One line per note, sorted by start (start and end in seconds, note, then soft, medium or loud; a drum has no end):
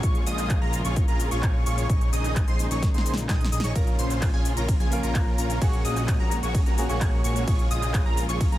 0.00 0.24 A#1 loud
0.00 1.88 C#3 medium
0.00 1.88 F3 medium
0.00 1.86 G#3 medium
0.00 0.24 F4 medium
0.00 1.88 F4 medium
0.00 0.24 G#4 medium
0.00 0.24 C#5 medium
0.00 0.24 C#6 medium
0.00 kick loud
0.00 closed hi-hat medium
0.00 shaker soft
0.15 closed hi-hat soft
0.27 0.59 A#1 loud
0.27 0.59 F4 loud
0.27 0.59 G#4 medium
0.27 0.59 D#5 loud
0.27 0.59 D#6 loud
0.27 open hi-hat loud
0.27 shaker medium
0.38 clap soft
0.38 closed hi-hat medium
0.38 shaker soft
0.50 kick loud
0.50 clap loud
0.50 closed hi-hat medium
0.50 shaker soft
0.61 0.82 A#1 loud
0.61 0.79 F4 loud
0.61 0.79 G#4 medium
0.61 0.79 A#4 loud
0.61 0.79 A#5 loud
0.73 open hi-hat loud
0.73 shaker medium
0.85 1.06 A#1 medium
0.85 1.02 F4 medium
0.85 1.02 G#4 medium
0.85 1.02 C#5 medium
0.85 1.02 C#6 medium
0.85 closed hi-hat medium
0.85 shaker soft
0.96 kick loud
0.96 closed hi-hat medium
0.96 shaker soft
1.08 1.29 A#1 loud
1.08 1.29 F4 medium
1.08 1.29 G#4 medium
1.08 1.29 A#4 loud
1.08 1.29 A#5 loud
1.08 closed hi-hat soft
1.20 open hi-hat loud
1.20 shaker medium
1.31 1.64 A#1 loud
1.31 1.63 F4 medium
1.31 1.63 G#4 medium
1.31 1.63 C#5 medium
1.31 1.63 C#6 medium
1.31 closed hi-hat medium
1.31 shaker soft
1.43 kick loud
1.43 clap loud
1.43 closed hi-hat medium
1.43 shaker soft
1.66 1.87 A#1 loud
1.66 1.87 F4 medium
1.66 1.87 G#4 medium
1.66 1.87 C#5 medium
1.66 1.87 C#6 medium
1.66 open hi-hat loud
1.66 shaker medium
1.78 closed hi-hat medium
1.78 shaker soft
1.89 2.10 A#1 loud
1.89 3.74 C#3 medium
1.89 3.74 D#3 medium
1.89 3.74 G#3 medium
1.89 3.74 D#4 medium
1.89 2.10 D#4 medium
1.89 2.10 G#4 medium
1.89 2.10 C#5 medium
1.89 2.10 C#6 medium
1.89 kick loud
1.89 closed hi-hat medium
1.89 shaker soft
2.01 closed hi-hat soft
2.13 2.45 A#1 loud
2.13 2.45 D#4 loud
2.13 2.45 G#4 medium
2.13 2.45 D#5 loud
2.13 2.45 D#6 loud
2.13 open hi-hat loud
2.13 shaker medium
2.24 clap soft
2.24 closed hi-hat medium
2.24 shaker soft
2.36 kick loud
2.36 clap loud
2.36 closed hi-hat medium
2.36 shaker soft
2.48 2.69 A#1 loud
2.48 2.65 D#4 loud
2.48 2.65 G#4 medium
2.48 2.65 C5 loud
2.48 2.65 C6 loud
2.48 closed hi-hat soft
2.59 open hi-hat loud
2.59 shaker medium
2.71 2.92 A#1 loud
2.71 2.88 D#4 medium
2.71 2.88 G#4 medium
2.71 2.88 C#5 medium
2.71 2.88 C#6 medium
2.71 closed hi-hat medium
2.71 shaker soft
2.83 kick loud
2.83 snare medium
2.83 closed hi-hat medium
2.83 shaker soft
2.94 3.27 A#1 loud
2.94 3.15 D#4 medium
2.94 3.15 G#4 medium
2.94 3.15 C5 medium
2.94 3.15 C6 loud
2.94 closed hi-hat soft
2.98 snare medium
3.06 open hi-hat loud
3.06 shaker medium
3.14 snare medium
3.14 closed hi-hat medium
3.18 shaker soft
3.29 3.50 A#1 loud
3.29 3.46 D#4 medium
3.29 3.46 G#4 medium
3.29 3.46 D#5 loud
3.29 3.46 D#6 loud
3.29 kick loud
3.29 snare medium
3.29 clap loud
3.29 closed hi-hat medium
3.29 shaker soft
3.41 snare loud
3.41 closed hi-hat soft
3.52 3.61 A#1 loud
3.52 3.61 D#4 medium
3.52 3.61 G#4 medium
3.52 3.61 D#5 medium
3.52 3.61 D#6 medium
3.52 open hi-hat loud
3.52 shaker medium
3.60 3.73 A#1 loud
3.60 3.73 D#4 loud
3.60 3.73 G#4 medium
3.60 3.73 C#5 loud
3.60 3.73 C#6 loud
3.60 snare loud
3.60 closed hi-hat medium
3.64 shaker soft
3.74 3.96 A#1 loud
3.74 5.60 C#3 medium
3.74 5.60 F3 medium
3.74 4.88 A#3 medium
3.74 7.44 A#3 medium
3.74 4.89 C#4 medium
3.74 3.96 C#4 medium
3.74 3.96 F4 medium
3.74 5.60 F4 medium
3.74 4.89 F4 medium
3.74 3.96 A#4 medium
3.74 4.90 A#4 medium
3.74 3.96 A#5 medium
3.74 kick loud
3.74 closed hi-hat medium
3.74 ride medium
3.74 shaker soft
3.87 closed hi-hat soft
3.99 4.31 A#1 loud
3.99 4.31 C#4 loud
3.99 4.31 F4 medium
3.99 4.31 C5 loud
3.99 4.31 C6 loud
3.99 open hi-hat loud
3.99 shaker medium
4.10 clap soft
4.10 closed hi-hat medium
4.10 shaker soft
4.22 kick loud
4.22 clap loud
4.22 closed hi-hat medium
4.22 ride medium
4.22 shaker soft
4.34 4.54 A#1 loud
4.34 4.51 C#4 loud
4.34 4.51 F4 medium
4.34 4.51 G#4 loud
4.34 4.51 G#5 loud
4.45 open hi-hat loud
4.45 shaker medium
4.57 4.78 A#1 medium
4.57 4.74 C#4 medium
4.57 4.74 F4 medium
4.57 4.74 A#4 medium
4.57 4.74 A#5 medium
4.57 closed hi-hat medium
4.57 shaker soft
4.68 kick loud
4.68 closed hi-hat medium
4.68 ride medium
4.68 shaker soft
4.80 5.01 A#1 loud
4.80 5.01 C#4 medium
4.80 5.01 F4 medium
4.80 5.01 G#4 medium
4.80 5.01 G#5 loud
4.80 closed hi-hat soft
4.91 5.58 A#3 loud
4.91 5.59 C#4 medium
4.91 5.59 F4 medium
4.91 5.59 A#4 loud
4.91 open hi-hat loud
4.91 shaker medium
5.03 5.36 A#1 loud
5.03 5.35 C#4 medium
5.03 5.35 F4 medium
5.03 5.35 A#4 medium
5.03 5.35 A#5 medium
5.03 closed hi-hat medium
5.03 shaker soft
5.15 kick loud
5.15 clap loud
5.15 closed hi-hat medium
5.15 ride medium
5.15 shaker soft
5.38 5.59 A#1 loud
5.38 5.59 C#4 medium
5.38 5.59 F4 medium
5.38 5.59 A#4 medium
5.38 5.59 A#5 medium
5.38 open hi-hat loud
5.38 shaker medium
5.50 closed hi-hat medium
5.50 shaker soft
5.60 5.82 A#1 loud
5.60 8.58 C#3 medium
5.60 8.58 G#3 medium
5.60 6.74 A#3 medium
5.60 5.82 A#3 medium
5.60 6.75 C#4 medium
5.60 5.82 C#4 medium
5.60 5.82 F#4 medium
5.60 7.46 F#4 medium
5.60 6.75 F#4 medium
5.60 5.82 G#4 medium
5.60 6.76 G#4 loud
5.60 5.82 C#5 medium
5.60 5.82 C#6 medium
5.60 kick loud
5.60 closed hi-hat medium
5.60 ride medium
5.60 shaker soft
5.73 closed hi-hat soft
5.85 6.17 A#1 loud
5.85 6.17 A#3 loud
5.85 6.17 C#4 medium
5.85 6.17 F#4 medium
5.85 6.17 G#4 medium
5.85 6.17 D#5 loud
5.85 6.17 D#6 loud
5.85 open hi-hat loud
5.85 shaker medium
5.96 clap soft
5.96 closed hi-hat medium
5.96 shaker soft
6.08 kick loud
6.08 clap loud
6.08 closed hi-hat medium
6.08 ride medium
6.08 shaker soft
6.20 6.41 A#1 loud
6.20 6.37 A#3 loud
6.20 6.37 C#4 medium
6.20 6.37 F#4 medium
6.20 6.37 G#4 medium
6.20 6.37 A#4 loud
6.20 6.37 A#5 loud
6.31 open hi-hat loud
6.31 shaker medium
6.43 6.64 A#1 loud
6.43 6.60 A#3 medium
6.43 6.60 C#4 medium
6.43 6.60 F#4 medium
6.43 6.60 G#4 medium
6.43 6.60 C#5 medium
6.43 6.60 C#6 medium
6.43 closed hi-hat medium
6.43 shaker soft
6.55 kick loud
6.55 closed hi-hat medium
6.55 ride medium
6.55 shaker soft
6.66 6.87 A#1 loud
6.66 6.87 A#3 medium
6.66 6.87 C#4 medium
6.66 6.87 F#4 medium
6.66 6.87 G#4 medium
6.66 6.87 A#4 loud
6.66 6.87 A#5 loud
6.66 closed hi-hat soft
6.77 6.86 A#3 medium
6.77 6.87 C#4 medium
6.77 6.87 F#4 medium
6.77 6.87 G#4 medium
6.77 open hi-hat loud
6.77 shaker medium
6.88 7.22 A#1 loud
6.88 7.44 A#3 loud
6.88 7.22 A#3 medium
6.88 7.45 C#4 medium
6.88 7.21 C#4 medium
6.88 7.21 F#4 medium
6.88 7.45 F#4 medium
6.88 7.22 G#4 medium
6.88 7.45 G#4 loud
6.88 7.21 C#5 medium
6.88 7.21 C#6 medium
6.88 closed hi-hat medium
6.88 shaker soft
7.01 kick loud
7.01 clap loud
7.01 closed hi-hat medium
7.01 ride medium
7.01 shaker soft
7.24 7.45 A#1 loud
7.24 7.45 A#3 medium
7.24 7.45 C#4 medium
7.24 7.45 F#4 medium
7.24 7.45 G#4 medium
7.24 7.45 C#5 medium
7.24 7.45 C#6 medium
7.24 open hi-hat loud
7.24 shaker medium
7.36 closed hi-hat medium
7.36 shaker soft
7.46 7.69 A#1 loud
7.46 8.58 F3 medium
7.46 8.58 G#3 medium
7.46 8.58 C#4 medium
7.46 7.68 F4 medium
7.46 8.58 F4 medium
7.46 7.68 G#4 medium
7.46 8.58 G#4 medium
7.46 7.68 C#5 medium
7.46 7.68 C#6 medium
7.46 kick loud
7.46 closed hi-hat medium
7.46 ride medium
7.46 shaker soft
7.59 closed hi-hat soft
7.71 8.03 A#1 loud
7.71 8.03 F4 loud
7.71 8.03 G#4 medium
7.71 8.03 D#5 loud
7.71 8.03 D#6 loud
7.71 open hi-hat loud
7.71 shaker medium
7.82 clap soft
7.82 closed hi-hat medium
7.82 shaker soft
7.94 kick loud
7.94 clap loud
7.94 closed hi-hat medium
7.94 ride medium
7.94 shaker soft
8.06 8.27 A#1 loud
8.06 8.23 F4 loud
8.06 8.23 G#4 medium
8.06 8.23 A#4 loud
8.06 8.23 A#5 loud
8.17 open hi-hat loud
8.17 shaker medium
8.29 8.50 A#1 loud
8.29 8.46 F4 medium
8.29 8.46 G#4 medium
8.29 8.46 C#5 medium
8.29 8.46 C#6 medium
8.29 closed hi-hat medium
8.29 shaker soft
8.41 kick loud
8.41 closed hi-hat medium
8.41 ride medium
8.41 shaker soft
8.52 8.58 A#1 loud
8.52 8.58 F4 medium
8.52 8.58 G#4 medium
8.52 8.58 A#4 medium
8.52 8.58 A#5 loud
8.52 closed hi-hat soft